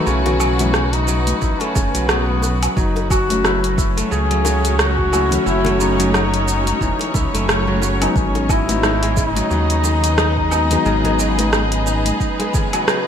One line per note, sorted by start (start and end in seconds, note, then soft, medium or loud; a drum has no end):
0.00 0.55 E3 loud
0.00 2.77 E3 medium
0.00 0.12 F#3 medium
0.00 0.55 F#3 medium
0.00 13.07 F#3 medium
0.00 1.60 A3 medium
0.00 0.55 B3 medium
0.00 0.56 E4 loud
0.00 1.30 E4 medium
0.00 3.67 F#4 medium
0.00 4.46 B4 medium
0.07 1.33 B1 medium
0.07 1.74 C#3 medium
0.07 0.70 C#4 loud
0.07 shaker soft
0.26 0.39 F#3 medium
0.26 closed hi-hat soft
0.26 high bongo medium
0.26 low conga medium
0.40 1.07 F#3 medium
0.40 low woodblock medium
0.40 shaker medium
0.58 0.77 E3 medium
0.58 0.77 F#3 medium
0.58 0.77 B3 medium
0.58 0.77 E4 loud
0.58 closed hi-hat soft
0.58 high conga medium
0.58 shaker soft
0.74 0.96 C#4 loud
0.74 cross-stick medium
0.74 shaker soft
0.93 1.42 D#4 loud
0.93 closed hi-hat soft
1.08 1.81 F#3 medium
1.08 shaker medium
1.27 closed hi-hat soft
1.27 high conga medium
1.27 shaker soft
1.42 1.54 A1 medium
1.42 1.63 D#4 loud
1.42 2.98 E4 medium
1.42 kick medium
1.42 shaker soft
1.60 3.61 A3 medium
1.60 2.11 C#4 loud
1.60 closed hi-hat soft
1.60 high bongo soft
1.75 1.88 F#1 medium
1.75 2.82 C#3 medium
1.75 kick loud
1.75 high bongo medium
1.75 shaker medium
1.94 2.68 B1 medium
1.94 2.08 F#3 medium
1.94 closed hi-hat medium
1.94 high conga soft
1.94 shaker soft
2.09 2.75 F#3 medium
2.09 2.62 B3 loud
2.09 cross-stick loud
2.09 shaker soft
2.29 high conga medium
2.42 high bongo medium
2.42 shaker medium
2.63 closed hi-hat medium
2.63 low woodblock medium
2.63 shaker soft
2.77 4.03 F#1 loud
2.77 4.17 F#3 medium
2.77 3.08 D#4 loud
2.77 kick loud
2.77 shaker soft
2.89 10.03 C#4 medium
2.96 closed hi-hat soft
2.96 high bongo medium
3.10 3.82 F#4 loud
3.10 kick loud
3.10 low woodblock medium
3.10 shaker medium
3.18 8.16 A3 medium
3.29 3.47 F#3 loud
3.29 3.47 A3 medium
3.29 3.47 C#4 medium
3.29 3.48 F#4 loud
3.29 closed hi-hat soft
3.29 high conga medium
3.29 shaker soft
3.44 3.77 E4 medium
3.44 cross-stick medium
3.44 shaker soft
3.64 closed hi-hat soft
3.78 5.12 E4 medium
3.78 kick loud
3.78 shaker medium
3.84 8.16 F#4 medium
3.96 5.65 A3 medium
3.96 10.34 C#5 medium
3.96 closed hi-hat medium
3.96 high conga medium
3.96 shaker soft
4.11 5.38 C#2 medium
4.11 5.79 C#3 medium
4.11 4.75 G#4 loud
4.11 shaker soft
4.31 4.44 F#3 medium
4.31 closed hi-hat soft
4.45 5.85 F#3 medium
4.45 high bongo medium
4.45 shaker medium
4.65 closed hi-hat medium
4.65 shaker soft
4.79 5.43 F#4 loud
4.79 cross-stick loud
4.79 shaker soft
4.98 kick medium
5.11 5.28 F#3 medium
5.11 5.29 A3 medium
5.11 5.29 C#4 medium
5.11 5.46 E4 medium
5.11 5.29 F#4 loud
5.11 low woodblock medium
5.11 shaker medium
5.30 5.94 F#3 medium
5.30 5.94 A3 medium
5.30 5.95 C#4 medium
5.30 5.95 F#4 loud
5.30 closed hi-hat medium
5.30 low conga medium
5.30 shaker soft
5.46 6.73 F#1 loud
5.46 7.03 E4 medium
5.46 5.78 E4 loud
5.46 shaker soft
5.65 7.34 A3 medium
5.65 closed hi-hat soft
5.65 high bongo medium
5.65 low conga medium
5.80 7.47 C#3 medium
5.80 7.79 D#4 loud
5.80 shaker medium
5.98 6.16 F#3 medium
5.98 6.12 F#3 medium
5.98 6.16 A3 medium
5.98 6.17 C#4 medium
5.98 6.17 F#4 loud
5.98 closed hi-hat medium
5.98 high conga medium
5.98 shaker soft
6.14 7.54 F#3 medium
6.14 cross-stick medium
6.14 shaker soft
6.34 closed hi-hat soft
6.48 shaker medium
6.65 closed hi-hat medium
6.65 high conga medium
6.65 shaker soft
6.81 6.94 E1 medium
6.81 7.54 E3 medium
6.81 kick medium
6.81 shaker soft
6.99 closed hi-hat soft
6.99 high bongo soft
7.14 7.27 C#2 medium
7.14 8.56 E4 medium
7.14 kick loud
7.14 high bongo medium
7.14 shaker medium
7.33 8.08 F#1 medium
7.33 9.09 A3 medium
7.33 closed hi-hat medium
7.33 high conga soft
7.33 shaker soft
7.48 8.21 C#3 medium
7.48 cross-stick loud
7.48 shaker soft
7.67 7.81 F#3 medium
7.67 high conga medium
7.82 8.21 F#3 medium
7.82 high bongo soft
7.82 shaker medium
8.00 8.64 F#3 medium
8.00 8.64 G#3 medium
8.00 8.64 B3 medium
8.00 8.65 D#4 loud
8.00 closed hi-hat medium
8.00 low woodblock medium
8.00 shaker soft
8.10 8.18 D#4 medium
8.16 9.42 G#1 loud
8.16 8.53 C#4 loud
8.16 kick loud
8.16 shaker soft
8.35 13.07 D#5 medium
8.35 closed hi-hat soft
8.35 high bongo medium
8.49 13.07 B3 medium
8.49 9.19 E4 loud
8.49 9.57 D#5 medium
8.49 kick loud
8.49 low woodblock medium
8.49 shaker medium
8.67 8.85 F#3 medium
8.67 8.86 G#3 medium
8.67 8.86 B3 medium
8.67 8.86 D#4 loud
8.67 closed hi-hat medium
8.67 high conga medium
8.67 shaker soft
8.83 10.18 D#4 medium
8.83 cross-stick medium
8.83 shaker soft
9.03 10.70 G#3 medium
9.03 closed hi-hat soft
9.17 10.84 C#3 medium
9.17 12.88 D#4 loud
9.17 kick loud
9.17 shaker medium
9.22 13.07 B4 medium
9.26 13.07 G#4 medium
9.35 9.49 F#3 medium
9.35 closed hi-hat medium
9.35 high conga medium
9.35 shaker soft
9.51 10.77 D#2 loud
9.51 10.91 F#3 medium
9.51 shaker soft
9.70 closed hi-hat soft
9.84 high bongo medium
9.84 shaker medium
10.04 closed hi-hat medium
10.04 shaker soft
10.18 10.52 D#4 medium
10.18 cross-stick loud
10.18 shaker soft
10.37 kick soft
10.51 10.68 F#3 medium
10.51 10.68 G#3 medium
10.51 10.68 B3 medium
10.51 11.86 D#4 medium
10.51 10.69 D#4 loud
10.51 low woodblock medium
10.51 shaker medium
10.70 11.33 F#3 loud
10.70 11.34 G#3 medium
10.70 12.38 G#3 medium
10.70 11.34 B3 medium
10.70 11.34 D#4 loud
10.70 closed hi-hat medium
10.70 low conga medium
10.70 shaker soft
10.86 12.12 G#1 loud
10.86 12.53 C#3 medium
10.86 shaker soft
11.04 11.18 F#3 medium
11.04 closed hi-hat soft
11.04 high bongo medium
11.04 low conga medium
11.19 12.59 F#3 medium
11.19 shaker medium
11.38 11.55 F#3 medium
11.38 11.56 G#3 medium
11.38 11.56 B3 medium
11.38 11.56 D#4 loud
11.38 closed hi-hat medium
11.38 high conga medium
11.38 shaker soft
11.53 cross-stick loud
11.53 shaker soft
11.72 closed hi-hat soft
11.87 12.20 D#4 medium
11.87 shaker medium
12.06 closed hi-hat medium
12.06 high conga medium
12.06 shaker soft
12.20 13.07 D#4 medium
12.20 kick medium
12.20 shaker soft
12.39 13.07 G#3 medium
12.39 closed hi-hat soft
12.39 high bongo medium
12.54 13.07 C#3 medium
12.54 kick loud
12.54 high bongo medium
12.54 low conga medium
12.54 shaker medium
12.73 12.87 F#3 medium
12.73 closed hi-hat medium
12.73 high conga soft
12.73 low woodblock medium
12.73 shaker soft
12.88 13.07 F#3 medium
12.88 cross-stick loud
12.88 shaker soft